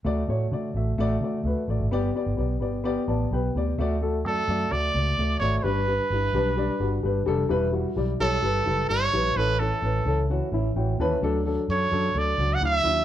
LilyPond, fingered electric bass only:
\new Staff \with { instrumentName = "Fingered electric bass" } { \clef bass \time 4/4 \key d \major \tempo 4 = 129 d,8 a,8 d8 a,,8 a,,8 d8 d,16 r16 a,,16 gis,,16 | r8. g,,16 b,,8 g,,4 a,,8 b,,8 d,8 | d,4 fis,8 fis,8 d,8 cis,8 d,8 gis,,8 | g,,4 g,,8 b,,4 g,,8 g,,8 f,,8 |
e,,4 b,,8 b,,8 g,,8 fis,,8 g,,8 bes,,8 | a,,4 a,,8 cis,4 a,,8 a,,8 ees,8 | d,4 fis,8 fis,8 d,8 cis,8 d,8 ees,8 | }